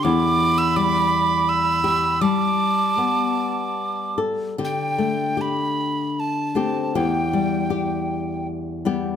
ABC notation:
X:1
M:3/4
L:1/16
Q:1/4=78
K:Em
V:1 name="Tin whistle"
d'3 e' d'4 e'4 | d'8- d'2 z2 | g4 b4 a4 | g8 z4 |]
V:2 name="Flute"
b12 | a8- a2 z2 | z12 | z12 |]
V:3 name="Nylon-string guitar"
E,,4 G,6 G2 | G,4 B,6 A2 | [D,G]2 A,2 G6 [A,CG]2 | [E,,G]2 G,2 G6 [G,B,G]2 |]